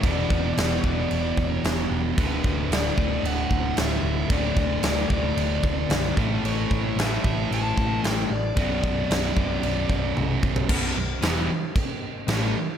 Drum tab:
CC |x---x---x---x---|x---x---x---x---|x---x---x---x---|x---x---x---x---|
SD |----o-------o---|----o-------o---|----o-------o---|----o-------o---|
T1 |----------------|----------------|----------------|----------------|
FT |----------------|----------------|----------------|----------------|
BD |o-o---o---o-----|o-o---o---o-----|o-o---o---o---o-|--o---o---o-----|

CC |x---x---x-------|x---x---x---x---|
SD |----o-----------|----o-------o---|
T1 |------------o---|----------------|
FT |---------------o|----------------|
BD |o-o---o---o---o-|o-------o-------|